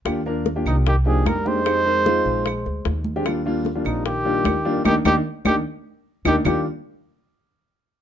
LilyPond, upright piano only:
\new Staff \with { instrumentName = "Upright piano" } { \time 4/4 \key ees \major \tempo 4 = 150 <bes d' f' g'>16 r16 <bes d' f' bes'>8 r16 <bes d' f' g'>8. r8 <bes d' ees' g'>8. r16 <bes d' ees' g'>16 r16 | <aes c' ees' g'>16 r16 <aes c' ees' bes'>16 r16 <aes c' ees' f'>4 r4. r16 <aes c' d' g'>16 | <g bes d' f'>16 r16 <g bes d' f'>8 r16 <g bes d' f'>8. r8 <g bes d' f'>8. r16 <g bes d' f'>16 r16 | <bes d' ees'>8 <bes d' ees'>8 r8 <bes d' ees'>8 r4. <bes d' ees'>8 |
<g bes d' f'>8 r2. r8 | }